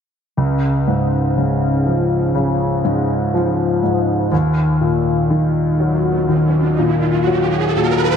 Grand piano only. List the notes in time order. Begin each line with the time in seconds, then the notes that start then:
0.37 C#2
0.88 G#2
1.37 C#3
1.86 F3
2.35 C#3
2.84 G#2
3.34 F3
3.83 G#2
4.32 D#2
4.81 A#2
5.30 D#3
5.80 F#3
6.29 D#3
6.78 A#2
7.27 F#3
7.76 A#2